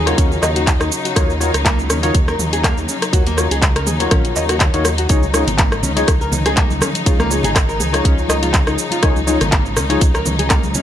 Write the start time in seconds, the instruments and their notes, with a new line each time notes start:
Already playing: detuned saw bass D#2, string section C#3 F#3 D#4
0.06 tine electric piano F4 F#4 A#4 C#5, cross-stick, closed hi-hat, shaker
0.18 detuned saw bass D#2, nylon-string guitar C#4, kick, closed hi-hat, shaker
0.32 shaker
0.42 detuned saw bass D#2, nylon-string guitar D#5, cross-stick, clap, shaker
0.56 nylon-string guitar F#4, closed hi-hat, shaker
0.67 kick, clap, closed hi-hat, shaker
0.80 detuned saw bass D#2, nylon-string guitar D#4, cross-stick, shaker
0.92 shaker
1.05 nylon-string guitar F#4, closed hi-hat, shaker
1.16 detuned saw bass D#2, nylon-string guitar D#4, tine electric piano F4 F#4 A#4 C#5, kick, cross-stick, closed hi-hat, shaker
1.30 shaker
1.40 nylon-string guitar D#4, tine electric piano F4 F#4 A#4 C#5, shaker
1.54 detuned saw bass C#2, cross-stick, closed hi-hat, shaker
1.65 nylon-string guitar A#3, kick, clap, closed hi-hat, shaker
1.79 shaker
1.90 detuned saw bass D#2, nylon-string guitar C#4, cross-stick, shaker
2.03 nylon-string guitar D#4, tine electric piano F4 F#4 A#4 C#5, closed hi-hat, shaker
2.15 detuned saw bass D#2, kick, closed hi-hat, shaker
2.28 nylon-string guitar A#4, cross-stick, shaker
2.39 detuned saw bass D#2, mid tom, shaker
2.53 nylon-string guitar G#4, closed hi-hat, shaker
2.64 nylon-string guitar A#3, kick, cross-stick, clap, closed hi-hat, shaker
2.77 detuned saw bass D#2, shaker
2.89 nylon-string guitar C#4, shaker
3.02 cross-stick, closed hi-hat, shaker
3.13 detuned saw bass D#2, tine electric piano F4 F#4 A#4 C#5, nylon-string guitar F#4, kick, closed hi-hat, shaker
3.27 nylon-string guitar A#3, closed hi-hat, shaker
3.37 tine electric piano F4 F#4 A#4 C#5, cross-stick, shaker
3.51 detuned saw bass C#2, nylon-string guitar G#4, closed hi-hat, shaker
3.62 kick, clap, closed hi-hat, shaker
3.76 nylon-string guitar A#4, cross-stick, closed hi-hat, shaker
3.86 detuned saw bass D#2, nylon-string guitar G#4, mid tom, shaker
4.00 tine electric piano F4 F#4 A#4 C#5, closed hi-hat, shaker
4.11 detuned saw bass A#1, nylon-string guitar C#4, kick, cross-stick, closed hi-hat, mid tom, shaker
4.25 closed hi-hat, shaker
4.36 detuned saw bass D#2, nylon-string guitar D#5, clap, shaker
4.49 nylon-string guitar F#4, cross-stick, closed hi-hat, shaker
4.60 kick, clap, closed hi-hat, shaker
4.74 detuned saw bass D#2, nylon-string guitar D#4, tine electric piano F4 F#4 A#4 C#5, closed hi-hat, shaker
4.85 cross-stick, shaker
4.98 nylon-string guitar F#4, closed hi-hat, shaker
5.09 detuned saw bass C#2, string section C#3 F3 D#4, tine electric piano D#4 F4 G#4 C#5, nylon-string guitar D#4, kick, closed hi-hat, shaker
5.23 high conga, shaker
5.33 tine electric piano D#4 F4 G#4 C#5, nylon-string guitar D#4, cross-stick, muted conga, shaker
5.47 detuned saw bass G#1, closed hi-hat, high conga, low conga, shaker
5.58 nylon-string guitar A#3, kick, clap, closed hi-hat, shaker
5.72 cross-stick, muted conga, shaker
5.83 detuned saw bass C#2, nylon-string guitar C#4, low conga, shaker
5.96 tine electric piano D#4 F4 G#4 C#5, nylon-string guitar D#4, closed hi-hat, high conga, shaker
6.08 detuned saw bass C#2, kick, cross-stick, closed hi-hat, muted conga, shaker
6.21 nylon-string guitar A#4, shaker
6.32 detuned saw bass C#2, mid tom, high conga, low conga, shaker
6.45 nylon-string guitar G#4, cross-stick, closed hi-hat, muted conga, shaker
6.57 nylon-string guitar A#3, kick, clap, closed hi-hat, shaker
6.70 detuned saw bass C#2, high conga, shaker
6.81 nylon-string guitar C#4, cross-stick, low conga, shaker
6.95 closed hi-hat, muted conga, shaker
7.06 detuned saw bass C#2, tine electric piano D#4 F4 G#4 C#5, nylon-string guitar F4, kick, closed hi-hat, shaker
7.20 nylon-string guitar A#3, cross-stick, high conga, shaker
7.30 tine electric piano D#4 F4 G#4 C#5, muted conga, shaker
7.43 detuned saw bass G#1, nylon-string guitar G#4, closed hi-hat, low conga, shaker
7.56 kick, cross-stick, clap, closed hi-hat, shaker
7.69 nylon-string guitar A#4, muted conga, shaker
7.80 detuned saw bass C#2, nylon-string guitar G#4, mid tom, shaker
7.93 tine electric piano D#4 F4 G#4 C#5, cross-stick, closed hi-hat, shaker
8.04 detuned saw bass C#2, nylon-string guitar C#4, kick, closed hi-hat, muted conga, shaker
8.18 shaker
8.28 detuned saw bass C#2, nylon-string guitar D#5, cross-stick, clap, high conga, shaker
8.43 nylon-string guitar F4, closed hi-hat, muted conga, shaker
8.54 kick, clap, closed hi-hat, high conga, shaker
8.67 detuned saw bass C#2, nylon-string guitar D#4, cross-stick, shaker
8.78 shaker
8.91 nylon-string guitar F4, closed hi-hat, muted conga, shaker
9.03 detuned saw bass C#2, tine electric piano D#4 F4 G#4 C#5, nylon-string guitar D#4, kick, cross-stick, closed hi-hat, shaker
9.16 high conga, shaker
9.27 tine electric piano D#4 F4 G#4 C#5, nylon-string guitar D#4, muted conga, shaker
9.41 detuned saw bass G#1, cross-stick, closed hi-hat, high conga, low conga, shaker
9.52 nylon-string guitar A#3, kick, clap, closed hi-hat, shaker
9.66 muted conga, shaker
9.77 detuned saw bass C#2, nylon-string guitar C#4, cross-stick, low conga, shaker
9.90 tine electric piano D#4 F4 G#4 C#5, nylon-string guitar D#4, closed hi-hat, high conga, shaker
10.01 detuned saw bass C#2, kick, closed hi-hat, muted conga, shaker
10.14 nylon-string guitar A#4, cross-stick, shaker
10.26 detuned saw bass C#2, mid tom, high conga, low conga, shaker
10.39 nylon-string guitar G#4, closed hi-hat, muted conga, shaker
10.50 nylon-string guitar A#3, kick, cross-stick, clap, closed hi-hat, shaker
10.63 detuned saw bass C#2, high conga, shaker
10.74 nylon-string guitar C#4, low conga, shaker